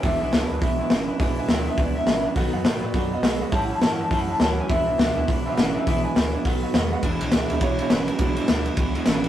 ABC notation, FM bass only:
X:1
M:4/4
L:1/8
Q:"Swing" 1/4=206
K:Emix
V:1 name="FM bass" clef=bass
E,,, B,,, C,, D,, B,,,2 G,,,2 | B,,,2 D,,2 C,,2 A,,,2 | B,,, F,, G,, A,, F,,2 B,,,2 | A,,,2 =G,,2 F,,2 D,,2 |
E,,, B,,, C,, D,, B,,,2 G,,,2 | B,,,2 D,,2 B,,,2 E,,2 | E,,, B,,, C,, D,, B,,,2 G,,,2 | B,,,2 D,,2 C,,2 A,,,2 |]